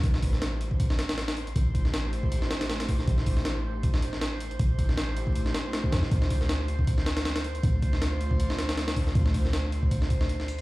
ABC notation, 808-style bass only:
X:1
M:4/4
L:1/8
Q:"Swing 16ths" 1/4=158
K:Am
V:1 name="808-style bass" clef=bass
A,,,6- A,,, z | A,,,6- A,,, z | A,,,6- A,,, z | A,,,4- A,,, z2 E,, |
D,,6- D,, z | D,,6- D,, z | D,,6- D,, z |]